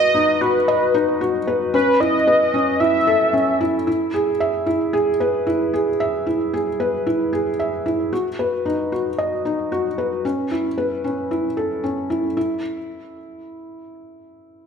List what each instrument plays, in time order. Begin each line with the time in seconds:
Already playing: felt piano B4, soft synth lead D#5
0.15 felt piano D#4
0.41 felt piano F#4, soft synth lead B4
0.68 felt piano D#5
0.94 felt piano D#4
1.21 felt piano F#4
1.47 felt piano B4
1.74 felt piano C#4, soft synth lead B4
2.00 felt piano E4, soft synth lead D#5
2.27 felt piano B4
2.54 felt piano C#4
2.80 felt piano E4, soft synth lead E5
3.07 felt piano A4
3.33 felt piano C#4
3.61 felt piano E4
3.87 felt piano E4
4.14 felt piano G#4
4.40 felt piano E5
4.66 felt piano E4
4.93 felt piano G#4
5.20 felt piano B4
5.47 felt piano E4
5.74 felt piano G#4
6.00 felt piano E5
6.27 felt piano E4
6.54 felt piano G#4
6.80 felt piano B4
7.07 felt piano E4
7.33 felt piano G#4
7.60 felt piano E5
7.86 felt piano E4
8.13 felt piano F#4
8.39 felt piano B4
8.65 felt piano D#4
8.92 felt piano F#4
9.18 felt piano D#5
9.45 felt piano D#4
9.72 felt piano F#4
9.98 felt piano B4
10.25 felt piano C#4
10.51 felt piano E4
10.78 felt piano B4
11.04 felt piano C#4
11.31 felt piano E4
11.57 felt piano A4
11.84 felt piano C#4
12.10 felt piano E4
12.37 felt piano E4